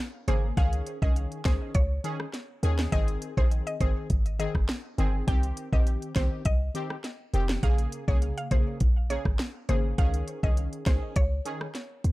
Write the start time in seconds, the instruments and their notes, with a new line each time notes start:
0.27 808-style bass G#1, synth stab C#3 A#3 G#4, synth pluck C5, closed hi-hat
0.57 808-style bass C#2, synth stab D#3 C#4 G#4, synth pluck F5, kick, closed hi-hat
0.73 closed hi-hat
0.87 closed hi-hat
1.02 808-style bass C2, synth stab D#3 C#4 G#4, synth pluck D#5, kick
1.16 closed hi-hat
1.32 closed hi-hat
1.45 808-style bass C#2, synth stab D#3 C#4 G#4, synth pluck C5, kick, snare, closed hi-hat
1.75 808-style bass C#2, synth pluck C#5, kick, closed hi-hat
2.04 synth stab D#3 C#4 G#4, closed hi-hat
2.20 cross-stick
2.33 snare, closed hi-hat
2.63 808-style bass D#2, synth stab D#3 C#4 G#4, closed hi-hat
2.79 snare
2.92 808-style bass G#1, synth stab D#3 C4 G#4, synth pluck D#5, kick, closed hi-hat
3.08 closed hi-hat
3.22 closed hi-hat
3.37 808-style bass A#1, synth stab D#3 C4 G#4, synth pluck C5, kick
3.51 closed hi-hat
3.67 synth pluck D#5, closed hi-hat
3.80 808-style bass G#1, synth stab D#3 C4 G#4, synth pluck C5, kick, closed hi-hat
4.10 808-style bass G#1, kick, closed hi-hat
4.26 closed hi-hat
4.39 synth stab D#3 C4 G#4, synth pluck D#5, closed hi-hat
4.55 808-style bass G1, kick, cross-stick
4.69 snare, closed hi-hat
4.98 808-style bass G1, synth stab D#3 C4 G#4, closed hi-hat
5.27 808-style bass C2, synth stab D#3 C4 G4, synth pluck G5, kick, closed hi-hat
5.43 closed hi-hat
5.57 closed hi-hat
5.72 808-style bass A#1, synth stab D#3 C4 G4, synth pluck D#5, kick
5.87 closed hi-hat
6.02 closed hi-hat
6.15 808-style bass C2, synth stab D#3 C4 G4, synth pluck C5, kick, snare, closed hi-hat
6.45 808-style bass C2, synth pluck D#5, kick, closed hi-hat
6.74 synth stab D#3 C4 G4, closed hi-hat
6.90 cross-stick
7.04 snare, closed hi-hat
7.33 808-style bass F1, synth stab D#3 C4 G4, closed hi-hat
7.49 snare
7.63 808-style bass A#1, synth stab C#3 A#3 G#4, synth pluck F5, kick, closed hi-hat
7.78 closed hi-hat
7.92 closed hi-hat
8.08 808-style bass C2, synth stab C#3 A#3 G#4, synth pluck C#5, kick
8.22 closed hi-hat
8.38 synth pluck F5, closed hi-hat
8.51 808-style bass A#1, synth stab C#3 A#3 G#4, synth pluck C5, kick, closed hi-hat
8.80 808-style bass A#1, kick, closed hi-hat
9.10 synth stab C#3 A#3 G#4, synth pluck C#5, closed hi-hat
9.25 808-style bass G#1, kick, cross-stick
9.39 snare, closed hi-hat
9.69 808-style bass G#1, synth stab C#3 A#3 G#4, synth pluck C5, closed hi-hat
9.98 808-style bass C#2, synth stab D#3 C#4 G#4, synth pluck F5, kick, closed hi-hat
10.14 closed hi-hat
10.28 closed hi-hat
10.43 808-style bass C2, synth stab D#3 C#4 G#4, synth pluck D#5, kick
10.57 closed hi-hat
10.73 closed hi-hat
10.86 808-style bass C#2, synth stab D#3 C#4 G#4, synth pluck C5, kick, snare, closed hi-hat
11.16 808-style bass C#2, synth pluck C#5, kick, closed hi-hat
11.45 synth stab D#3 C#4 G#4, closed hi-hat
11.61 cross-stick
11.75 snare, closed hi-hat
12.04 808-style bass D#2, closed hi-hat